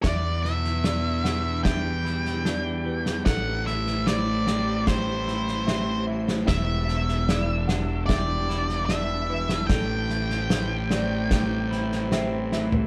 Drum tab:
SD |o-ooo-o-o-ooo--o|o-ooo-o-o-ooo--o|o-ooo-o-o-ooo--o|o-ooo-o-o-ooo-o-|
FT |----------------|----------------|----------------|---------------o|
BD |o-------o-------|o-------o-------|o-------o-------|o-------o-------|